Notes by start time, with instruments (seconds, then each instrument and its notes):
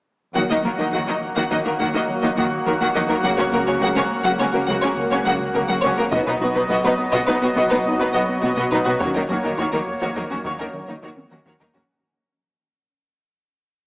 0.35 sub bass D#1, double bass section D#2, analog synth bass D#2, synth pluck D#3, cello section D#3, french horn section F#3 A#3, analog synth pad F#3 A#3 F#4 F#5, viola section A#3, violin section F#4 F#5, taiko
0.49 analog synth bass D#2, cello section D#3, viola section A#3, synth pluck D#4, violin section D#4 D#5
0.64 double bass section D#2, analog synth bass D#2, cello section D#3, synth pluck F#3, viola section A#3, violin section A#3 A#4
0.78 analog synth bass D#2, cello section D#3, viola section A#3, synth pluck D#4, violin section D#4 D#5
0.93 double bass section D#2, analog synth bass D#2, synth pluck D#3, cello section D#3, viola section A#3, violin section F#4 F#5
1.07 cello section D#3, analog synth bass D#3, synth pluck A#3, viola section A#3, violin section D#4 D#5
1.22 analog synth bass D#2
1.36 analog synth bass D#2, cello section D#3, synth pluck D#3, viola section A#3, violin section F#4 F#5
1.50 double bass section D#2, analog synth bass D#2, cello section D#3, synth pluck F#3, viola section A#3, violin section D#4 D#5
1.65 analog synth bass D#2, cello section D#3, viola section A#3, violin section A#3 A#4, synth pluck D#4
1.79 analog synth bass D#2, double bass section D#2, cello section D#3, synth pluck D#3, viola section A#3, violin section F#4 F#5
1.94 analog synth bass D#2, cello section D#3, viola section A#3, violin section D#4 D#5, synth pluck D#4
2.08 analog synth bass D#3, french horn section F#3 A#3
2.23 cello section D#3, analog synth bass D#3, viola section A#3, synth pluck A#3, violin section D#4 D#5
2.37 analog synth bass D#2, double bass section D#2, cello section D#3, synth pluck D#3, viola section A#3, violin section F#4 F#5
2.52 analog synth bass D#3
2.66 double bass section D#2, cello section D#3, analog synth bass D#3, viola section A#3, violin section A#3 A#4, synth pluck A#3
2.80 analog synth bass D#2, cello section D#3, synth pluck D#3, viola section A#3, violin section F#4 F#5
2.95 analog synth bass D#2, double bass section D#2, cello section D#3, synth pluck F#3, viola section A#3, violin section D#4 D#5
3.08 analog synth bass D#2, cello section D#3, viola section A#3, violin section A#3 A#4, synth pluck D#4
3.23 double bass section C#2, analog synth bass C#2, sub bass C#2, cello section C#3, synth pluck F#3, french horn section F#3 A#3, viola section A#3, violin section F#4 F#5
3.38 analog synth bass C#2, cello section C#3, viola section A#3, violin section C#4 C#5, synth pluck F#4
3.52 analog synth bass C#2, double bass section C#2, cello section C#3, viola section A#3, synth pluck A#3, violin section A#3 A#4
3.67 analog synth bass C#2, cello section C#3, viola section A#3, violin section C#4 C#5, synth pluck F#4
3.81 analog synth bass C#2, double bass section C#2, cello section C#3, synth pluck F#3, viola section A#3, violin section F#4 F#5
3.96 analog synth bass C#3, cello section C#3, viola section A#3, violin section C#4 C#5, synth pluck C#4
4.11 analog synth bass C#2
4.25 analog synth bass C#2, cello section C#3, synth pluck F#3, viola section A#3, violin section F#4 F#5
4.39 analog synth bass C#2, double bass section C#2, cello section C#3, synth pluck A#3, viola section A#3, violin section C#4 C#5
4.53 analog synth bass C#2, cello section C#3, viola section A#3, violin section A#3 A#4, synth pluck F#4
4.68 analog synth bass C#2, double bass section C#2, cello section C#3, synth pluck F#3, viola section A#3, violin section F#4 F#5
4.82 analog synth bass C#2, cello section C#3, viola section A#3, violin section C#4 C#5, synth pluck F#4
4.97 analog synth bass C#3, french horn section F#3 A#3
5.11 analog synth bass C#3, cello section C#3, viola section A#3, synth pluck C#4, violin section C#4 C#5
5.25 double bass section C#2, analog synth bass C#2, cello section C#3, synth pluck F#3, viola section A#3, violin section F#4 F#5
5.40 analog synth bass C#3
5.54 double bass section C#2, cello section C#3, analog synth bass C#3, viola section A#3, violin section A#3 A#4, synth pluck C#4
5.68 analog synth bass C#2, cello section C#3, synth pluck F#3, viola section A#3, violin section F#4 F#5
5.82 analog synth bass C#2, double bass section C#2, cello section C#3, synth pluck A#3, viola section A#3, violin section C#4 C#5
5.98 analog synth bass C#2, cello section C#3, viola section A#3, violin section A#3 A#4, synth pluck F#4
6.12 sub bass B1, double bass section B1, analog synth bass B2, cello section B2, analog synth pad F#3 B3 F#4 D#5, french horn section F#3 D#4, synth pluck B3, viola section B3, violin section F#4 D#5, taiko
6.27 cello section B2, analog synth bass B2, viola section B3, violin section D#4 B4, synth pluck B4
6.41 double bass section B1, analog synth bass B2, cello section B2, viola section B3, violin section B3 F#4, synth pluck D#4
6.55 cello section B2, analog synth bass B2, viola section B3, violin section D#4 B4, synth pluck B4
6.70 double bass section B1, cello section B2, analog synth bass B2, synth pluck B3, viola section B3, violin section F#4 D#5, taiko
6.84 cello section B2, analog synth bass B3, viola section B3, violin section D#4 B4, synth pluck F#4
6.99 analog synth bass B2
7.13 analog synth bass B2, cello section B2, synth pluck B3, viola section B3, violin section F#4 D#5, taiko
7.27 double bass section B1, analog synth bass B2, cello section B2, viola section B3, synth pluck D#4, violin section D#4 B4
7.41 analog synth bass B2, cello section B2, violin section B3 F#4, viola section B3, synth pluck B4
7.56 double bass section B1, analog synth bass B2, cello section B2, synth pluck B3, viola section B3, violin section F#4 D#5, taiko
7.71 cello section B2, analog synth bass B2, viola section B3, violin section D#4 B4, synth pluck B4
7.86 french horn section F#3 D#4, analog synth bass B3
8.00 cello section B2, analog synth bass B3, viola section B3, violin section D#4 B4, synth pluck F#4
8.14 double bass section B1, cello section B2, analog synth bass B2, synth pluck B3, viola section B3, violin section F#4 D#5
8.29 analog synth bass B3
8.43 double bass section B1, cello section B2, analog synth bass B3, violin section B3 F#4, viola section B3, synth pluck F#4
8.57 analog synth bass B2, cello section B2, synth pluck B3, viola section B3, violin section F#4 D#5
8.71 double bass section B1, analog synth bass B2, cello section B2, viola section B3, synth pluck D#4, violin section D#4 B4
8.86 analog synth bass B2, cello section B2, violin section B3 F#4, viola section B3, synth pluck B4
9.00 sub bass D#1, analog synth bass D#2, double bass section D#2, synth pluck D#3, cello section D#3, french horn section F#3 C#4, analog synth pad A#3 C#5, viola section A#3, violin section F#4 C#5, taiko
9.15 analog synth bass D#2, cello section D#3, viola section A#3, synth pluck C#4, violin section D#4 A#4
9.29 double bass section D#2, analog synth bass D#2, cello section D#3, synth pluck F#3, viola section A#3, violin section C#4 F#4
9.44 analog synth bass D#2, cello section D#3, viola section A#3, synth pluck C#4, violin section D#4 A#4
9.58 analog synth bass D#2, double bass section D#2, synth pluck D#3, cello section D#3, viola section A#3, violin section F#4 C#5, taiko
9.73 analog synth bass D#3, cello section D#3, synth pluck A#3, viola section A#3, violin section D#4 A#4
9.87 analog synth bass D#2
10.01 analog synth bass D#2, synth pluck D#3, cello section D#3, viola section A#3, violin section F#4 C#5, taiko
10.16 analog synth bass D#2, double bass section D#2, cello section D#3, synth pluck F#3, viola section A#3, violin section D#4 A#4
10.30 analog synth bass D#2, cello section D#3, viola section A#3, violin section C#4 F#4, synth pluck C#4
10.45 analog synth bass D#2, double bass section D#2, synth pluck D#3, cello section D#3, viola section A#3, violin section F#4 C#5, taiko
10.59 analog synth bass D#2, cello section D#3, viola section A#3, synth pluck C#4, violin section D#4 A#4
10.73 analog synth bass D#3, french horn section F#3 C#4
10.88 analog synth bass D#3, cello section D#3, synth pluck A#3, viola section A#3, violin section D#4 A#4
11.02 analog synth bass D#2, double bass section D#2, synth pluck D#3, cello section D#3, viola section A#3, violin section F#4 C#5
11.17 analog synth bass D#3, taiko high
11.31 double bass section D#2, analog synth bass D#3, cello section D#3, synth pluck A#3, viola section A#3, violin section C#4 F#4, taiko mid
11.46 analog synth bass D#2, synth pluck D#3, cello section D#3, viola section A#3, violin section F#4 C#5, taiko mid
11.60 double bass section D#2, analog synth bass D#2, cello section D#3, synth pluck F#3, viola section A#3, violin section D#4 A#4, taiko mid
11.74 analog synth bass D#2, cello section D#3, viola section A#3, violin section C#4 F#4, synth pluck C#4, taiko low